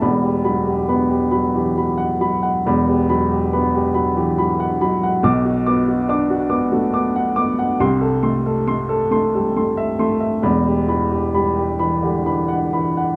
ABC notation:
X:1
M:3/4
L:1/16
Q:1/4=69
K:Em
V:1 name="Upright piano"
b G b G b G b G b f b f | b G b G b G b G b f b f | d' F d' F d' F d' F d' f d' f | c' A c' A c' A c' A c' e c' e |
b G b G b G b G b f b f |]
V:2 name="Upright piano" clef=bass
[E,,,E,,]2 F,2 B,2 F, E, F,2 F,2 | [E,,,E,,] B, F,2 B,2 F, E, F,2 F,2 | [B,,,B,,]2 B,2 D2 B, A, B,2 B,2 | [C,,C,]2 A,2 A,2 A, G, A,2 A,2 |
[E,,,E,,]2 E,2 G,2 E, D, E,2 E,2 |]